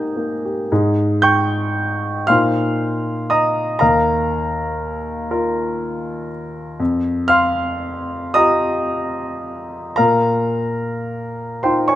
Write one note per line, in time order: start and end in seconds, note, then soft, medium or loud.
0.00 0.66 G#2 soft
0.00 0.16 A#3 soft
0.00 0.72 D#4 soft
0.00 0.45 G4 soft
0.00 0.67 G#5 soft
0.00 0.69 A#5 soft
0.00 0.71 D#6 soft
0.00 0.72 G6 soft
0.16 0.61 A#3 soft
0.45 0.71 G4 soft
0.72 2.25 G#2 soft
0.72 2.26 D#4 soft
0.72 2.25 G#4 soft
1.22 2.24 G5 medium
1.22 2.24 C#6 medium
1.22 2.28 G6 medium
2.27 3.77 A#2 soft
2.27 3.78 D#4 soft
2.27 3.77 C5 soft
2.27 3.26 F5 medium
2.27 3.26 C6 medium
2.27 3.30 F6 medium
3.30 3.77 D#5 medium
3.30 3.77 A#5 medium
3.30 3.81 D#6 medium
3.79 6.76 D#2 medium
3.79 5.30 A#4 medium
3.79 6.26 F5 medium
3.79 6.29 A#5 medium
5.31 6.76 F4 soft
5.31 6.76 A#4 soft
6.80 9.95 F2 medium
7.28 8.31 F5 medium
7.28 8.31 C6 medium
7.28 8.35 F6 medium
8.34 9.95 F4 soft
8.34 9.95 G4 soft
8.34 9.94 D#5 medium
8.34 9.94 A#5 medium
8.34 9.98 D#6 medium
9.96 11.95 A#2 soft
9.96 11.58 A#4 medium
9.96 11.58 F5 medium
9.96 11.61 A#5 medium
11.63 11.95 D#4 soft
11.63 11.95 F4 soft
11.63 11.88 C5 soft
11.63 11.88 G5 soft
11.63 11.90 C6 medium
11.88 11.95 C#5 soft
11.88 11.95 G#5 soft
11.88 11.95 C#6 medium